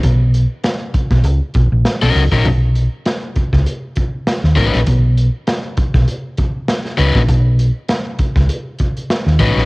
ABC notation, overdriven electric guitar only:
X:1
M:4/4
L:1/16
Q:"Swing 16ths" 1/4=99
K:Cblyd
V:1 name="Overdriven electric guitar"
z12 z [^F,^C^D^A] z [F,CDA] | z12 z2 [^F,^C^D=B] z | z12 z2 [^F,^C^D=B] z | z12 z2 [^F,^C^D=B] z |]